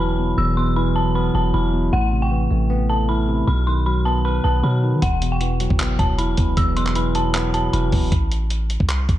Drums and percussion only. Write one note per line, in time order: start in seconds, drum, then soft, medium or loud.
5.02 kick loud
5.02 closed hi-hat medium
5.22 closed hi-hat medium
5.41 closed hi-hat medium
5.60 closed hi-hat medium
5.70 kick loud
5.80 clap loud
5.80 closed hi-hat medium
5.99 kick loud
5.99 closed hi-hat medium
6.19 closed hi-hat medium
6.37 kick medium
6.37 closed hi-hat medium
6.57 kick loud
6.57 closed hi-hat medium
6.77 closed hi-hat medium
6.86 clap medium
6.95 closed hi-hat medium
7.15 closed hi-hat medium
7.34 clap loud
7.34 closed hi-hat medium
7.54 closed hi-hat medium
7.73 closed hi-hat medium
7.92 kick loud
7.92 open hi-hat medium
8.12 kick loud
8.12 closed hi-hat medium
8.32 closed hi-hat medium
8.50 closed hi-hat medium
8.70 closed hi-hat medium
8.80 kick loud
8.89 clap loud
8.89 closed hi-hat medium
9.09 kick loud
9.09 closed hi-hat medium